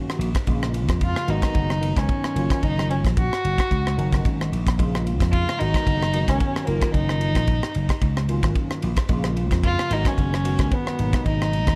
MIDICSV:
0, 0, Header, 1, 6, 480
1, 0, Start_track
1, 0, Tempo, 538600
1, 426, Time_signature, 4, 2, 24, 8
1, 10474, End_track
2, 0, Start_track
2, 0, Title_t, "Violin"
2, 0, Program_c, 0, 40
2, 925, Note_on_c, 0, 65, 76
2, 1160, Note_on_c, 0, 63, 87
2, 1173, Note_off_c, 0, 65, 0
2, 1770, Note_on_c, 0, 61, 80
2, 1784, Note_off_c, 0, 63, 0
2, 2350, Note_on_c, 0, 63, 89
2, 2363, Note_off_c, 0, 61, 0
2, 2582, Note_off_c, 0, 63, 0
2, 2588, Note_on_c, 0, 61, 74
2, 2695, Note_off_c, 0, 61, 0
2, 2836, Note_on_c, 0, 66, 93
2, 3755, Note_off_c, 0, 66, 0
2, 4746, Note_on_c, 0, 65, 93
2, 4983, Note_on_c, 0, 63, 107
2, 4996, Note_off_c, 0, 65, 0
2, 5603, Note_on_c, 0, 61, 83
2, 5617, Note_off_c, 0, 63, 0
2, 5944, Note_on_c, 0, 58, 75
2, 5957, Note_off_c, 0, 61, 0
2, 6179, Note_off_c, 0, 58, 0
2, 6184, Note_on_c, 0, 63, 87
2, 7111, Note_off_c, 0, 63, 0
2, 8611, Note_on_c, 0, 65, 99
2, 8851, Note_on_c, 0, 63, 97
2, 8864, Note_off_c, 0, 65, 0
2, 8978, Note_on_c, 0, 61, 91
2, 8992, Note_off_c, 0, 63, 0
2, 9575, Note_on_c, 0, 59, 92
2, 9589, Note_off_c, 0, 61, 0
2, 10040, Note_off_c, 0, 59, 0
2, 10045, Note_on_c, 0, 63, 87
2, 10474, Note_off_c, 0, 63, 0
2, 10474, End_track
3, 0, Start_track
3, 0, Title_t, "Tine electric piano"
3, 0, Program_c, 1, 4
3, 0, Note_on_c, 1, 51, 79
3, 0, Note_on_c, 1, 54, 80
3, 0, Note_on_c, 1, 58, 77
3, 0, Note_on_c, 1, 61, 69
3, 0, Note_on_c, 1, 66, 83
3, 256, Note_off_c, 1, 54, 0
3, 257, Note_off_c, 1, 51, 0
3, 258, Note_off_c, 1, 58, 0
3, 258, Note_off_c, 1, 66, 0
3, 259, Note_off_c, 1, 61, 0
3, 418, Note_on_c, 1, 49, 81
3, 418, Note_on_c, 1, 53, 75
3, 422, Note_on_c, 1, 56, 80
3, 426, Note_on_c, 1, 58, 73
3, 426, Note_on_c, 1, 65, 81
3, 1130, Note_off_c, 1, 56, 0
3, 1134, Note_on_c, 1, 51, 79
3, 1137, Note_on_c, 1, 59, 73
3, 1138, Note_on_c, 1, 54, 67
3, 1139, Note_on_c, 1, 66, 81
3, 1140, Note_on_c, 1, 56, 66
3, 1141, Note_off_c, 1, 49, 0
3, 1142, Note_off_c, 1, 53, 0
3, 1146, Note_off_c, 1, 58, 0
3, 1146, Note_off_c, 1, 65, 0
3, 1530, Note_off_c, 1, 51, 0
3, 1532, Note_off_c, 1, 54, 0
3, 1532, Note_off_c, 1, 59, 0
3, 1533, Note_off_c, 1, 56, 0
3, 1533, Note_off_c, 1, 66, 0
3, 1610, Note_on_c, 1, 51, 67
3, 1610, Note_on_c, 1, 54, 64
3, 1614, Note_on_c, 1, 56, 60
3, 1614, Note_on_c, 1, 59, 58
3, 1616, Note_on_c, 1, 63, 72
3, 2088, Note_off_c, 1, 51, 0
3, 2091, Note_off_c, 1, 54, 0
3, 2099, Note_on_c, 1, 51, 64
3, 2100, Note_off_c, 1, 56, 0
3, 2100, Note_off_c, 1, 59, 0
3, 2101, Note_off_c, 1, 63, 0
3, 2102, Note_on_c, 1, 54, 62
3, 2103, Note_on_c, 1, 58, 61
3, 2103, Note_on_c, 1, 61, 60
3, 2107, Note_on_c, 1, 65, 75
3, 2874, Note_off_c, 1, 51, 0
3, 2875, Note_off_c, 1, 54, 0
3, 2876, Note_off_c, 1, 58, 0
3, 2876, Note_off_c, 1, 61, 0
3, 2878, Note_off_c, 1, 65, 0
3, 3540, Note_on_c, 1, 54, 68
3, 3542, Note_on_c, 1, 58, 65
3, 3545, Note_on_c, 1, 51, 76
3, 3546, Note_on_c, 1, 61, 75
3, 3547, Note_on_c, 1, 63, 82
3, 4092, Note_off_c, 1, 54, 0
3, 4093, Note_off_c, 1, 58, 0
3, 4095, Note_off_c, 1, 51, 0
3, 4095, Note_off_c, 1, 61, 0
3, 4096, Note_off_c, 1, 63, 0
3, 4262, Note_on_c, 1, 56, 79
3, 4263, Note_on_c, 1, 49, 75
3, 4265, Note_on_c, 1, 53, 74
3, 4266, Note_on_c, 1, 58, 77
3, 4268, Note_on_c, 1, 65, 92
3, 4977, Note_off_c, 1, 56, 0
3, 4985, Note_off_c, 1, 49, 0
3, 4986, Note_off_c, 1, 53, 0
3, 4987, Note_off_c, 1, 58, 0
3, 4987, Note_on_c, 1, 51, 76
3, 4988, Note_off_c, 1, 65, 0
3, 4988, Note_on_c, 1, 56, 71
3, 4993, Note_on_c, 1, 54, 63
3, 4994, Note_on_c, 1, 66, 78
3, 4995, Note_on_c, 1, 59, 65
3, 5378, Note_off_c, 1, 51, 0
3, 5378, Note_off_c, 1, 56, 0
3, 5381, Note_off_c, 1, 54, 0
3, 5381, Note_off_c, 1, 66, 0
3, 5382, Note_off_c, 1, 59, 0
3, 5463, Note_on_c, 1, 51, 72
3, 5464, Note_on_c, 1, 54, 58
3, 5468, Note_on_c, 1, 66, 74
3, 5470, Note_on_c, 1, 56, 60
3, 5471, Note_on_c, 1, 59, 59
3, 5939, Note_off_c, 1, 51, 0
3, 5946, Note_off_c, 1, 54, 0
3, 5948, Note_off_c, 1, 66, 0
3, 5949, Note_off_c, 1, 56, 0
3, 5949, Note_off_c, 1, 59, 0
3, 5950, Note_on_c, 1, 51, 75
3, 5955, Note_on_c, 1, 58, 59
3, 5956, Note_on_c, 1, 54, 63
3, 5956, Note_on_c, 1, 61, 55
3, 5956, Note_on_c, 1, 65, 79
3, 6721, Note_off_c, 1, 51, 0
3, 6723, Note_off_c, 1, 58, 0
3, 6724, Note_off_c, 1, 54, 0
3, 6724, Note_off_c, 1, 61, 0
3, 6724, Note_off_c, 1, 65, 0
3, 7384, Note_on_c, 1, 51, 84
3, 7387, Note_on_c, 1, 58, 73
3, 7389, Note_on_c, 1, 54, 76
3, 7392, Note_on_c, 1, 61, 77
3, 7392, Note_on_c, 1, 65, 90
3, 7936, Note_off_c, 1, 51, 0
3, 7937, Note_off_c, 1, 58, 0
3, 7938, Note_off_c, 1, 54, 0
3, 7939, Note_off_c, 1, 65, 0
3, 7940, Note_off_c, 1, 61, 0
3, 8097, Note_on_c, 1, 49, 85
3, 8100, Note_on_c, 1, 53, 78
3, 8101, Note_on_c, 1, 56, 70
3, 8103, Note_on_c, 1, 65, 96
3, 8104, Note_on_c, 1, 58, 77
3, 8814, Note_off_c, 1, 56, 0
3, 8823, Note_off_c, 1, 49, 0
3, 8824, Note_on_c, 1, 51, 72
3, 8825, Note_off_c, 1, 53, 0
3, 8825, Note_on_c, 1, 54, 70
3, 8825, Note_on_c, 1, 56, 74
3, 8825, Note_on_c, 1, 59, 67
3, 8826, Note_off_c, 1, 65, 0
3, 8827, Note_off_c, 1, 58, 0
3, 8832, Note_on_c, 1, 66, 78
3, 9217, Note_off_c, 1, 51, 0
3, 9218, Note_off_c, 1, 54, 0
3, 9218, Note_off_c, 1, 56, 0
3, 9218, Note_off_c, 1, 59, 0
3, 9222, Note_off_c, 1, 66, 0
3, 9308, Note_on_c, 1, 56, 66
3, 9311, Note_on_c, 1, 51, 67
3, 9311, Note_on_c, 1, 54, 56
3, 9313, Note_on_c, 1, 66, 82
3, 9314, Note_on_c, 1, 59, 62
3, 9789, Note_off_c, 1, 56, 0
3, 9791, Note_off_c, 1, 51, 0
3, 9791, Note_off_c, 1, 54, 0
3, 9792, Note_off_c, 1, 59, 0
3, 9792, Note_off_c, 1, 66, 0
3, 9802, Note_on_c, 1, 47, 71
3, 9803, Note_on_c, 1, 54, 65
3, 9805, Note_on_c, 1, 63, 79
3, 9806, Note_on_c, 1, 56, 60
3, 9807, Note_on_c, 1, 58, 67
3, 10474, Note_off_c, 1, 47, 0
3, 10474, Note_off_c, 1, 54, 0
3, 10474, Note_off_c, 1, 56, 0
3, 10474, Note_off_c, 1, 58, 0
3, 10474, Note_off_c, 1, 63, 0
3, 10474, End_track
4, 0, Start_track
4, 0, Title_t, "Slap bass"
4, 0, Program_c, 2, 36
4, 169, Note_on_c, 2, 34, 101
4, 291, Note_off_c, 2, 34, 0
4, 426, Note_on_c, 2, 34, 93
4, 793, Note_off_c, 2, 34, 0
4, 793, Note_on_c, 2, 41, 85
4, 1008, Note_off_c, 2, 41, 0
4, 1142, Note_on_c, 2, 32, 87
4, 1258, Note_off_c, 2, 32, 0
4, 1380, Note_on_c, 2, 30, 89
4, 1713, Note_off_c, 2, 30, 0
4, 1751, Note_on_c, 2, 37, 71
4, 1852, Note_off_c, 2, 37, 0
4, 2098, Note_on_c, 2, 30, 91
4, 2217, Note_off_c, 2, 30, 0
4, 2341, Note_on_c, 2, 30, 84
4, 2714, Note_off_c, 2, 30, 0
4, 2714, Note_on_c, 2, 34, 81
4, 2929, Note_off_c, 2, 34, 0
4, 3071, Note_on_c, 2, 30, 84
4, 3184, Note_off_c, 2, 30, 0
4, 3309, Note_on_c, 2, 37, 92
4, 3523, Note_off_c, 2, 37, 0
4, 3546, Note_on_c, 2, 30, 82
4, 3762, Note_off_c, 2, 30, 0
4, 3786, Note_on_c, 2, 32, 73
4, 4002, Note_off_c, 2, 32, 0
4, 4029, Note_on_c, 2, 34, 82
4, 4244, Note_off_c, 2, 34, 0
4, 4271, Note_on_c, 2, 34, 91
4, 4638, Note_off_c, 2, 34, 0
4, 4638, Note_on_c, 2, 41, 81
4, 4852, Note_off_c, 2, 41, 0
4, 5001, Note_on_c, 2, 32, 83
4, 5110, Note_off_c, 2, 32, 0
4, 5225, Note_on_c, 2, 30, 83
4, 5556, Note_off_c, 2, 30, 0
4, 5598, Note_on_c, 2, 37, 74
4, 5697, Note_off_c, 2, 37, 0
4, 5952, Note_on_c, 2, 30, 99
4, 6065, Note_off_c, 2, 30, 0
4, 6186, Note_on_c, 2, 30, 92
4, 6554, Note_off_c, 2, 30, 0
4, 6554, Note_on_c, 2, 34, 78
4, 6770, Note_off_c, 2, 34, 0
4, 6912, Note_on_c, 2, 30, 83
4, 7026, Note_off_c, 2, 30, 0
4, 7149, Note_on_c, 2, 37, 87
4, 7479, Note_off_c, 2, 37, 0
4, 7516, Note_on_c, 2, 32, 70
4, 7616, Note_off_c, 2, 32, 0
4, 7873, Note_on_c, 2, 34, 108
4, 7986, Note_off_c, 2, 34, 0
4, 8101, Note_on_c, 2, 34, 88
4, 8476, Note_off_c, 2, 34, 0
4, 8476, Note_on_c, 2, 41, 87
4, 8692, Note_off_c, 2, 41, 0
4, 8827, Note_on_c, 2, 32, 90
4, 8943, Note_off_c, 2, 32, 0
4, 9069, Note_on_c, 2, 30, 81
4, 9400, Note_off_c, 2, 30, 0
4, 9436, Note_on_c, 2, 37, 72
4, 9537, Note_off_c, 2, 37, 0
4, 9797, Note_on_c, 2, 32, 103
4, 9909, Note_off_c, 2, 32, 0
4, 10028, Note_on_c, 2, 32, 90
4, 10401, Note_off_c, 2, 32, 0
4, 10401, Note_on_c, 2, 39, 80
4, 10474, Note_off_c, 2, 39, 0
4, 10474, End_track
5, 0, Start_track
5, 0, Title_t, "Muted slap bass strokes"
5, 66, Note_on_c, 9, 29, 32
5, 155, Note_off_c, 9, 29, 0
5, 1994, Note_on_c, 9, 29, 34
5, 2083, Note_off_c, 9, 29, 0
5, 5846, Note_on_c, 9, 29, 32
5, 5935, Note_off_c, 9, 29, 0
5, 7763, Note_on_c, 9, 29, 35
5, 7852, Note_off_c, 9, 29, 0
5, 9692, Note_on_c, 9, 29, 32
5, 9781, Note_off_c, 9, 29, 0
5, 10474, End_track
6, 0, Start_track
6, 0, Title_t, "Drums"
6, 87, Note_on_c, 9, 37, 82
6, 176, Note_off_c, 9, 37, 0
6, 187, Note_on_c, 9, 51, 67
6, 277, Note_off_c, 9, 51, 0
6, 309, Note_on_c, 9, 51, 65
6, 311, Note_on_c, 9, 36, 84
6, 319, Note_on_c, 9, 37, 82
6, 398, Note_off_c, 9, 51, 0
6, 400, Note_off_c, 9, 36, 0
6, 408, Note_off_c, 9, 37, 0
6, 419, Note_on_c, 9, 51, 62
6, 422, Note_on_c, 9, 36, 77
6, 508, Note_off_c, 9, 51, 0
6, 511, Note_off_c, 9, 36, 0
6, 560, Note_on_c, 9, 37, 86
6, 649, Note_off_c, 9, 37, 0
6, 661, Note_on_c, 9, 51, 58
6, 750, Note_off_c, 9, 51, 0
6, 789, Note_on_c, 9, 51, 60
6, 790, Note_on_c, 9, 36, 76
6, 799, Note_on_c, 9, 37, 82
6, 878, Note_off_c, 9, 51, 0
6, 879, Note_off_c, 9, 36, 0
6, 888, Note_off_c, 9, 37, 0
6, 900, Note_on_c, 9, 51, 58
6, 902, Note_on_c, 9, 36, 84
6, 989, Note_off_c, 9, 51, 0
6, 991, Note_off_c, 9, 36, 0
6, 1037, Note_on_c, 9, 37, 78
6, 1126, Note_off_c, 9, 37, 0
6, 1141, Note_on_c, 9, 51, 53
6, 1230, Note_off_c, 9, 51, 0
6, 1266, Note_on_c, 9, 51, 59
6, 1268, Note_on_c, 9, 36, 72
6, 1276, Note_on_c, 9, 37, 80
6, 1356, Note_off_c, 9, 51, 0
6, 1357, Note_off_c, 9, 36, 0
6, 1365, Note_off_c, 9, 37, 0
6, 1378, Note_on_c, 9, 51, 53
6, 1380, Note_on_c, 9, 36, 76
6, 1467, Note_off_c, 9, 51, 0
6, 1469, Note_off_c, 9, 36, 0
6, 1517, Note_on_c, 9, 37, 72
6, 1606, Note_off_c, 9, 37, 0
6, 1627, Note_on_c, 9, 51, 63
6, 1716, Note_off_c, 9, 51, 0
6, 1751, Note_on_c, 9, 36, 84
6, 1754, Note_on_c, 9, 51, 60
6, 1764, Note_on_c, 9, 37, 73
6, 1840, Note_off_c, 9, 36, 0
6, 1843, Note_off_c, 9, 51, 0
6, 1853, Note_off_c, 9, 37, 0
6, 1862, Note_on_c, 9, 36, 99
6, 1862, Note_on_c, 9, 51, 49
6, 1951, Note_off_c, 9, 36, 0
6, 1951, Note_off_c, 9, 51, 0
6, 1998, Note_on_c, 9, 37, 83
6, 2087, Note_off_c, 9, 37, 0
6, 2105, Note_on_c, 9, 51, 62
6, 2194, Note_off_c, 9, 51, 0
6, 2230, Note_on_c, 9, 36, 89
6, 2232, Note_on_c, 9, 51, 62
6, 2242, Note_on_c, 9, 37, 91
6, 2320, Note_off_c, 9, 36, 0
6, 2321, Note_off_c, 9, 51, 0
6, 2331, Note_off_c, 9, 37, 0
6, 2342, Note_on_c, 9, 36, 74
6, 2343, Note_on_c, 9, 51, 53
6, 2431, Note_off_c, 9, 36, 0
6, 2432, Note_off_c, 9, 51, 0
6, 2489, Note_on_c, 9, 37, 85
6, 2578, Note_off_c, 9, 37, 0
6, 2590, Note_on_c, 9, 51, 52
6, 2679, Note_off_c, 9, 51, 0
6, 2714, Note_on_c, 9, 36, 78
6, 2722, Note_on_c, 9, 51, 50
6, 2732, Note_on_c, 9, 37, 69
6, 2803, Note_off_c, 9, 36, 0
6, 2811, Note_off_c, 9, 51, 0
6, 2821, Note_off_c, 9, 37, 0
6, 2826, Note_on_c, 9, 36, 108
6, 2831, Note_on_c, 9, 51, 57
6, 2915, Note_off_c, 9, 36, 0
6, 2920, Note_off_c, 9, 51, 0
6, 2967, Note_on_c, 9, 37, 74
6, 3056, Note_off_c, 9, 37, 0
6, 3072, Note_on_c, 9, 51, 55
6, 3161, Note_off_c, 9, 51, 0
6, 3194, Note_on_c, 9, 36, 82
6, 3198, Note_on_c, 9, 51, 53
6, 3207, Note_on_c, 9, 37, 85
6, 3283, Note_off_c, 9, 36, 0
6, 3287, Note_off_c, 9, 51, 0
6, 3296, Note_off_c, 9, 37, 0
6, 3307, Note_on_c, 9, 36, 74
6, 3314, Note_on_c, 9, 51, 50
6, 3396, Note_off_c, 9, 36, 0
6, 3404, Note_off_c, 9, 51, 0
6, 3449, Note_on_c, 9, 37, 81
6, 3538, Note_off_c, 9, 37, 0
6, 3553, Note_on_c, 9, 51, 59
6, 3642, Note_off_c, 9, 51, 0
6, 3677, Note_on_c, 9, 36, 85
6, 3680, Note_on_c, 9, 51, 54
6, 3690, Note_on_c, 9, 37, 81
6, 3766, Note_off_c, 9, 36, 0
6, 3769, Note_off_c, 9, 51, 0
6, 3779, Note_off_c, 9, 37, 0
6, 3789, Note_on_c, 9, 36, 92
6, 3795, Note_on_c, 9, 51, 58
6, 3878, Note_off_c, 9, 36, 0
6, 3884, Note_off_c, 9, 51, 0
6, 3933, Note_on_c, 9, 37, 80
6, 4022, Note_off_c, 9, 37, 0
6, 4039, Note_on_c, 9, 51, 56
6, 4128, Note_off_c, 9, 51, 0
6, 4159, Note_on_c, 9, 36, 81
6, 4164, Note_on_c, 9, 51, 66
6, 4173, Note_on_c, 9, 37, 90
6, 4248, Note_off_c, 9, 36, 0
6, 4253, Note_off_c, 9, 51, 0
6, 4263, Note_off_c, 9, 37, 0
6, 4270, Note_on_c, 9, 36, 77
6, 4275, Note_on_c, 9, 51, 58
6, 4359, Note_off_c, 9, 36, 0
6, 4364, Note_off_c, 9, 51, 0
6, 4413, Note_on_c, 9, 37, 80
6, 4502, Note_off_c, 9, 37, 0
6, 4516, Note_on_c, 9, 51, 52
6, 4605, Note_off_c, 9, 51, 0
6, 4638, Note_on_c, 9, 36, 83
6, 4643, Note_on_c, 9, 51, 61
6, 4653, Note_on_c, 9, 37, 77
6, 4727, Note_off_c, 9, 36, 0
6, 4732, Note_off_c, 9, 51, 0
6, 4742, Note_off_c, 9, 37, 0
6, 4750, Note_on_c, 9, 36, 89
6, 4752, Note_on_c, 9, 51, 57
6, 4839, Note_off_c, 9, 36, 0
6, 4841, Note_off_c, 9, 51, 0
6, 4893, Note_on_c, 9, 37, 85
6, 4982, Note_off_c, 9, 37, 0
6, 4995, Note_on_c, 9, 51, 58
6, 5084, Note_off_c, 9, 51, 0
6, 5118, Note_on_c, 9, 36, 83
6, 5122, Note_on_c, 9, 51, 59
6, 5132, Note_on_c, 9, 37, 83
6, 5207, Note_off_c, 9, 36, 0
6, 5211, Note_off_c, 9, 51, 0
6, 5221, Note_off_c, 9, 37, 0
6, 5229, Note_on_c, 9, 36, 70
6, 5231, Note_on_c, 9, 51, 61
6, 5318, Note_off_c, 9, 36, 0
6, 5320, Note_off_c, 9, 51, 0
6, 5370, Note_on_c, 9, 37, 74
6, 5459, Note_off_c, 9, 37, 0
6, 5468, Note_on_c, 9, 51, 70
6, 5557, Note_off_c, 9, 51, 0
6, 5597, Note_on_c, 9, 36, 75
6, 5599, Note_on_c, 9, 51, 66
6, 5608, Note_on_c, 9, 37, 76
6, 5686, Note_off_c, 9, 36, 0
6, 5688, Note_off_c, 9, 51, 0
6, 5698, Note_off_c, 9, 37, 0
6, 5708, Note_on_c, 9, 36, 98
6, 5708, Note_on_c, 9, 51, 59
6, 5797, Note_off_c, 9, 36, 0
6, 5797, Note_off_c, 9, 51, 0
6, 5848, Note_on_c, 9, 37, 78
6, 5938, Note_off_c, 9, 37, 0
6, 5945, Note_on_c, 9, 51, 58
6, 6034, Note_off_c, 9, 51, 0
6, 6073, Note_on_c, 9, 51, 53
6, 6074, Note_on_c, 9, 36, 78
6, 6082, Note_on_c, 9, 37, 86
6, 6162, Note_off_c, 9, 51, 0
6, 6163, Note_off_c, 9, 36, 0
6, 6172, Note_off_c, 9, 37, 0
6, 6185, Note_on_c, 9, 51, 60
6, 6186, Note_on_c, 9, 36, 82
6, 6275, Note_off_c, 9, 36, 0
6, 6275, Note_off_c, 9, 51, 0
6, 6321, Note_on_c, 9, 37, 79
6, 6410, Note_off_c, 9, 37, 0
6, 6424, Note_on_c, 9, 51, 59
6, 6513, Note_off_c, 9, 51, 0
6, 6552, Note_on_c, 9, 51, 57
6, 6553, Note_on_c, 9, 36, 77
6, 6561, Note_on_c, 9, 37, 77
6, 6641, Note_off_c, 9, 51, 0
6, 6642, Note_off_c, 9, 36, 0
6, 6650, Note_off_c, 9, 37, 0
6, 6661, Note_on_c, 9, 51, 54
6, 6664, Note_on_c, 9, 36, 88
6, 6750, Note_off_c, 9, 51, 0
6, 6753, Note_off_c, 9, 36, 0
6, 6801, Note_on_c, 9, 37, 76
6, 6890, Note_off_c, 9, 37, 0
6, 6903, Note_on_c, 9, 51, 53
6, 6992, Note_off_c, 9, 51, 0
6, 7032, Note_on_c, 9, 36, 72
6, 7032, Note_on_c, 9, 51, 47
6, 7042, Note_on_c, 9, 37, 78
6, 7121, Note_off_c, 9, 36, 0
6, 7121, Note_off_c, 9, 51, 0
6, 7131, Note_off_c, 9, 37, 0
6, 7144, Note_on_c, 9, 36, 80
6, 7144, Note_on_c, 9, 51, 56
6, 7233, Note_off_c, 9, 36, 0
6, 7233, Note_off_c, 9, 51, 0
6, 7281, Note_on_c, 9, 37, 75
6, 7371, Note_off_c, 9, 37, 0
6, 7386, Note_on_c, 9, 51, 57
6, 7475, Note_off_c, 9, 51, 0
6, 7513, Note_on_c, 9, 36, 90
6, 7513, Note_on_c, 9, 51, 57
6, 7523, Note_on_c, 9, 37, 83
6, 7602, Note_off_c, 9, 36, 0
6, 7603, Note_off_c, 9, 51, 0
6, 7612, Note_off_c, 9, 37, 0
6, 7624, Note_on_c, 9, 36, 97
6, 7624, Note_on_c, 9, 51, 50
6, 7713, Note_off_c, 9, 51, 0
6, 7714, Note_off_c, 9, 36, 0
6, 7760, Note_on_c, 9, 37, 80
6, 7849, Note_off_c, 9, 37, 0
6, 7864, Note_on_c, 9, 51, 58
6, 7953, Note_off_c, 9, 51, 0
6, 7989, Note_on_c, 9, 51, 59
6, 7992, Note_on_c, 9, 36, 76
6, 7999, Note_on_c, 9, 37, 90
6, 8078, Note_off_c, 9, 51, 0
6, 8081, Note_off_c, 9, 36, 0
6, 8088, Note_off_c, 9, 37, 0
6, 8099, Note_on_c, 9, 51, 60
6, 8102, Note_on_c, 9, 36, 81
6, 8188, Note_off_c, 9, 51, 0
6, 8191, Note_off_c, 9, 36, 0
6, 8234, Note_on_c, 9, 37, 87
6, 8323, Note_off_c, 9, 37, 0
6, 8347, Note_on_c, 9, 51, 52
6, 8436, Note_off_c, 9, 51, 0
6, 8475, Note_on_c, 9, 36, 73
6, 8478, Note_on_c, 9, 51, 55
6, 8488, Note_on_c, 9, 37, 78
6, 8564, Note_off_c, 9, 36, 0
6, 8567, Note_off_c, 9, 51, 0
6, 8577, Note_off_c, 9, 37, 0
6, 8587, Note_on_c, 9, 36, 95
6, 8588, Note_on_c, 9, 51, 56
6, 8676, Note_off_c, 9, 36, 0
6, 8677, Note_off_c, 9, 51, 0
6, 8727, Note_on_c, 9, 37, 88
6, 8816, Note_off_c, 9, 37, 0
6, 8829, Note_on_c, 9, 51, 62
6, 8918, Note_off_c, 9, 51, 0
6, 8958, Note_on_c, 9, 36, 82
6, 8958, Note_on_c, 9, 51, 57
6, 8968, Note_on_c, 9, 37, 76
6, 9047, Note_off_c, 9, 36, 0
6, 9047, Note_off_c, 9, 51, 0
6, 9057, Note_off_c, 9, 37, 0
6, 9071, Note_on_c, 9, 36, 73
6, 9076, Note_on_c, 9, 51, 54
6, 9160, Note_off_c, 9, 36, 0
6, 9165, Note_off_c, 9, 51, 0
6, 9214, Note_on_c, 9, 37, 84
6, 9303, Note_off_c, 9, 37, 0
6, 9313, Note_on_c, 9, 51, 68
6, 9402, Note_off_c, 9, 51, 0
6, 9435, Note_on_c, 9, 51, 60
6, 9438, Note_on_c, 9, 36, 86
6, 9445, Note_on_c, 9, 37, 82
6, 9524, Note_off_c, 9, 51, 0
6, 9527, Note_off_c, 9, 36, 0
6, 9534, Note_off_c, 9, 37, 0
6, 9549, Note_on_c, 9, 51, 60
6, 9551, Note_on_c, 9, 36, 108
6, 9638, Note_off_c, 9, 51, 0
6, 9640, Note_off_c, 9, 36, 0
6, 9688, Note_on_c, 9, 37, 77
6, 9777, Note_off_c, 9, 37, 0
6, 9793, Note_on_c, 9, 51, 58
6, 9882, Note_off_c, 9, 51, 0
6, 9920, Note_on_c, 9, 36, 88
6, 9920, Note_on_c, 9, 51, 61
6, 9930, Note_on_c, 9, 37, 89
6, 10009, Note_off_c, 9, 51, 0
6, 10010, Note_off_c, 9, 36, 0
6, 10019, Note_off_c, 9, 37, 0
6, 10032, Note_on_c, 9, 51, 51
6, 10033, Note_on_c, 9, 36, 78
6, 10122, Note_off_c, 9, 51, 0
6, 10123, Note_off_c, 9, 36, 0
6, 10176, Note_on_c, 9, 37, 82
6, 10265, Note_off_c, 9, 37, 0
6, 10277, Note_on_c, 9, 51, 52
6, 10366, Note_off_c, 9, 51, 0
6, 10400, Note_on_c, 9, 51, 57
6, 10401, Note_on_c, 9, 36, 78
6, 10410, Note_on_c, 9, 37, 76
6, 10474, Note_off_c, 9, 36, 0
6, 10474, Note_off_c, 9, 37, 0
6, 10474, Note_off_c, 9, 51, 0
6, 10474, End_track
0, 0, End_of_file